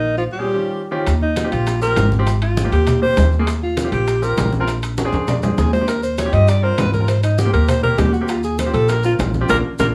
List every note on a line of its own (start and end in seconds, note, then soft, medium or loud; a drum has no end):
0.00 0.26 A#1 medium
0.00 0.17 D#3 medium
0.00 0.17 D#4 loud
0.17 0.24 F3 medium
0.17 0.24 F4 medium
0.32 0.88 G3 medium
0.32 0.88 G4 medium
0.39 0.46 A#2 medium
0.39 0.46 C4 medium
0.39 0.47 C#4 medium
0.39 0.46 G#4 medium
0.54 0.80 D#3 medium
0.54 0.80 C4 medium
0.54 0.80 C#4 medium
0.54 0.80 F4 medium
0.54 0.80 G4 medium
0.91 1.06 D#3 medium
0.91 1.06 C4 medium
0.91 1.07 C#4 medium
0.91 1.07 F4 medium
0.91 1.07 G4 loud
1.06 1.49 D#2 medium
1.06 high bongo medium
1.06 high conga soft
1.06 high timbale loud
1.06 maracas medium
1.21 1.50 D#4 medium
1.21 high conga soft
1.36 high bongo medium
1.36 high conga medium
1.36 high timbale medium
1.36 low timbale medium
1.36 maracas medium
1.44 1.70 C4 medium
1.44 1.71 F4 medium
1.44 1.71 G4 medium
1.52 1.94 A#1 medium
1.52 1.80 F4 medium
1.52 high timbale medium
1.52 maracas soft
1.67 high bongo medium
1.67 high conga soft
1.67 high timbale medium
1.67 maracas medium
1.81 2.08 C4 medium
1.81 2.08 F4 medium
1.81 2.08 G4 medium
1.81 2.10 A#4 loud
1.81 high conga soft
1.81 maracas medium
1.96 2.66 G#1 loud
1.96 high bongo medium
1.96 low bongo medium
1.96 high conga medium
1.96 high timbale loud
1.96 low timbale medium
1.96 maracas medium
2.12 high conga medium
2.12 maracas soft
2.19 2.27 C4 loud
2.19 2.27 F4 medium
2.19 2.27 G4 loud
2.27 high bongo medium
2.27 high conga soft
2.27 high timbale medium
2.27 maracas medium
2.42 2.70 F4 medium
2.42 high bongo soft
2.42 high conga soft
2.42 high timbale medium
2.57 high bongo medium
2.57 high conga loud
2.57 low timbale medium
2.57 maracas medium
2.64 2.91 A#3 medium
2.64 2.91 C4 medium
2.64 2.91 G4 medium
2.72 3.14 D#2 loud
2.72 3.00 G4 medium
2.72 high bongo soft
2.72 high conga soft
2.72 high timbale medium
2.72 maracas soft
2.87 high bongo medium
2.87 high conga soft
2.87 low conga medium
2.87 high timbale loud
2.87 maracas medium
3.02 3.28 A#3 medium
3.02 3.28 C4 medium
3.02 3.28 G4 medium
3.02 3.30 C5 loud
3.02 high conga soft
3.17 3.87 D#2 loud
3.17 high bongo medium
3.17 low bongo medium
3.17 high conga medium
3.17 high timbale medium
3.17 low timbale loud
3.17 maracas medium
3.32 high bongo soft
3.32 high conga soft
3.32 maracas soft
3.39 3.47 A#3 loud
3.39 3.47 C4 medium
3.39 3.47 G#4 medium
3.47 high bongo medium
3.47 high conga soft
3.47 high timbale medium
3.47 maracas medium
3.62 3.90 F4 medium
3.62 high conga soft
3.77 high bongo medium
3.77 high conga medium
3.77 high timbale medium
3.77 low timbale medium
3.77 maracas medium
3.84 4.11 C4 medium
3.84 4.11 F4 medium
3.84 4.11 G4 medium
3.92 4.34 A#1 medium
3.92 4.25 G4 medium
3.92 high timbale medium
3.92 maracas soft
4.08 high bongo medium
4.08 high conga soft
4.08 high timbale medium
4.08 maracas medium
4.22 4.49 C4 medium
4.22 4.49 F4 medium
4.22 4.49 G4 medium
4.22 4.53 A#4 medium
4.22 high conga soft
4.22 maracas medium
4.37 5.07 A#1 loud
4.37 high bongo medium
4.37 low bongo medium
4.37 high conga medium
4.37 high timbale loud
4.37 low timbale medium
4.37 maracas medium
4.53 high conga medium
4.53 maracas soft
4.60 4.68 C4 loud
4.60 4.68 F4 medium
4.60 4.68 A#4 loud
4.68 high bongo medium
4.68 high conga soft
4.68 high timbale medium
4.68 maracas medium
4.83 high bongo soft
4.83 high conga soft
4.83 high timbale loud
4.83 maracas medium
4.98 high bongo medium
4.98 high conga medium
4.98 high timbale loud
4.98 maracas medium
5.05 5.31 C4 medium
5.05 5.31 D4 medium
5.05 5.32 G#4 loud
5.12 5.55 F2 loud
5.12 high bongo soft
5.12 high conga soft
5.12 high timbale medium
5.12 maracas soft
5.28 5.42 D5 medium
5.28 high bongo medium
5.28 high conga soft
5.28 low conga medium
5.28 high timbale medium
5.28 maracas medium
5.43 5.69 C4 medium
5.43 5.69 D4 medium
5.43 5.59 F4 soft
5.43 5.70 G#4 medium
5.43 high conga soft
5.43 low conga medium
5.43 low timbale medium
5.43 maracas medium
5.58 6.28 D#2 medium
5.58 5.72 G#4 loud
5.58 high bongo medium
5.58 low bongo medium
5.58 high conga medium
5.58 maracas medium
5.73 5.90 C5 loud
5.73 high bongo soft
5.73 low timbale medium
5.73 maracas soft
5.81 5.88 C4 medium
5.81 5.88 D4 medium
5.81 5.88 G4 medium
5.88 6.03 A#4 medium
5.88 high bongo medium
5.88 high conga soft
5.88 high timbale medium
5.88 maracas medium
6.03 6.20 C5 loud
6.03 high conga soft
6.03 maracas medium
6.18 6.35 C#5 medium
6.18 high bongo medium
6.18 high conga medium
6.18 high timbale loud
6.18 low timbale medium
6.18 maracas medium
6.25 6.52 C4 medium
6.25 6.52 F4 medium
6.25 6.52 G4 medium
6.33 6.75 G2 medium
6.33 6.50 D#5 loud
6.33 high timbale medium
6.33 maracas soft
6.48 6.65 D5 loud
6.48 high bongo medium
6.48 high conga soft
6.48 high timbale medium
6.48 maracas medium
6.63 6.89 C4 medium
6.63 6.89 F4 medium
6.63 6.90 A#4 medium
6.63 6.81 C5 loud
6.63 high conga soft
6.78 7.48 G#2 loud
6.78 6.93 B4 medium
6.78 high bongo medium
6.78 low bongo medium
6.78 high conga medium
6.78 high timbale loud
6.78 low timbale medium
6.78 maracas medium
6.93 7.10 A#4 medium
6.93 high conga medium
6.93 maracas soft
7.00 7.08 C4 medium
7.00 7.08 F4 medium
7.00 7.08 A#4 medium
7.08 7.23 C5 loud
7.08 high bongo medium
7.08 high conga soft
7.08 high timbale medium
7.08 maracas medium
7.23 7.40 D#4 medium
7.23 high bongo soft
7.23 high conga soft
7.23 high timbale medium
7.23 maracas medium
7.38 7.53 G4 medium
7.38 high bongo medium
7.38 high conga medium
7.38 low timbale medium
7.38 maracas medium
7.45 7.72 A#3 medium
7.45 7.72 C4 medium
7.45 7.72 G4 medium
7.53 7.95 D#2 medium
7.53 7.70 A#4 loud
7.53 high bongo soft
7.53 high conga soft
7.53 high timbale medium
7.53 maracas soft
7.68 7.83 C5 loud
7.68 high bongo medium
7.68 high conga soft
7.68 low conga medium
7.68 high timbale loud
7.68 maracas medium
7.83 8.10 A#3 medium
7.83 8.10 C4 medium
7.83 8.10 G4 medium
7.83 8.00 A#4 loud
7.83 high conga soft
7.83 low conga medium
7.98 8.68 D#2 loud
7.98 8.15 G4 medium
7.98 high bongo medium
7.98 low bongo medium
7.98 high conga medium
7.98 high timbale medium
7.98 low timbale medium
7.98 maracas medium
8.13 8.30 F#4 medium
8.13 high bongo soft
8.13 high conga soft
8.13 maracas soft
8.21 8.29 A#3 medium
8.21 8.29 C4 medium
8.21 8.29 G4 medium
8.28 8.43 F4 medium
8.28 high bongo medium
8.28 high conga soft
8.28 high timbale medium
8.28 maracas medium
8.43 8.61 G#4 medium
8.43 high conga soft
8.43 maracas medium
8.58 8.74 C5 loud
8.58 high bongo medium
8.58 high conga medium
8.58 high timbale medium
8.58 low timbale medium
8.58 maracas medium
8.66 8.92 C4 medium
8.66 8.93 F4 medium
8.66 8.93 G4 medium
8.73 9.16 A#1 loud
8.73 8.91 A4 loud
8.73 high timbale medium
8.73 maracas soft
8.88 9.04 A#4 loud
8.88 high bongo medium
8.88 high conga soft
8.88 high timbale medium
8.88 maracas medium
9.03 9.30 C4 medium
9.03 9.30 F4 medium
9.03 9.14 F4 medium
9.03 9.30 A#4 medium
9.03 high conga soft
9.03 maracas medium
9.19 9.47 A#1 loud
9.19 high bongo medium
9.19 low bongo medium
9.19 high conga medium
9.19 high timbale loud
9.19 low timbale medium
9.19 maracas medium
9.34 high conga medium
9.34 maracas soft
9.41 9.49 C4 loud
9.41 9.48 F4 medium
9.41 9.49 G4 loud
9.49 9.60 A#1 loud
9.49 9.59 A#3 loud
9.49 9.59 D4 loud
9.49 9.59 F4 loud
9.49 9.57 A#4 loud
9.49 high bongo loud
9.49 high conga loud
9.49 high timbale loud
9.49 maracas medium
9.79 9.91 A#1 medium
9.79 9.89 A#3 loud
9.79 9.89 D4 medium
9.79 9.89 F4 medium
9.79 9.87 A#4 medium
9.79 high bongo loud
9.79 high conga medium
9.79 high timbale medium
9.79 maracas loud